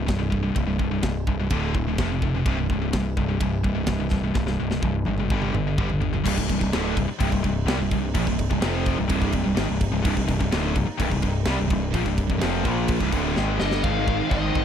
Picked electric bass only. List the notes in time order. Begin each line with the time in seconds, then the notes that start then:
0.08 C1
0.56 C1
0.80 C1
1.04 C1
1.27 C1
1.51 D1
1.76 D1
1.99 F1
2.46 C1
2.71 C1
2.94 C1
3.17 C1
3.41 C1
3.64 C1
3.88 C1
4.35 C1
4.60 C1
4.83 C1
5.07 G#1
5.31 G1
5.53 G1
5.78 G1
6.26 C1
6.38 C1
6.50 C1
6.62 C1
6.74 D1
6.97 C1
7.09 muted picked electric bass stroke
7.20 C1
7.32 C1
7.45 C1
7.66 C2
7.78 C1
7.92 C1
8.15 A#1
8.27 C1
8.51 C1
8.62 F1
8.99 C1
9.10 C1
9.34 C1
9.47 C1
9.57 G#1
9.70 C1
9.92 C1
10.06 C1
10.17 C1
10.29 C1
10.41 C1
10.52 D1
10.76 C1
10.89 muted picked electric bass stroke
11.00 C1
11.12 C1
11.23 C1
11.46 C2
11.60 C1
11.71 C1
11.94 A#1
12.07 C1
12.30 C1
12.42 F1
12.66 A#1
13.01 C1
13.13 D1
13.37 G#1
13.61 G1
13.84 G#1
14.31 G#1
14.56 G#1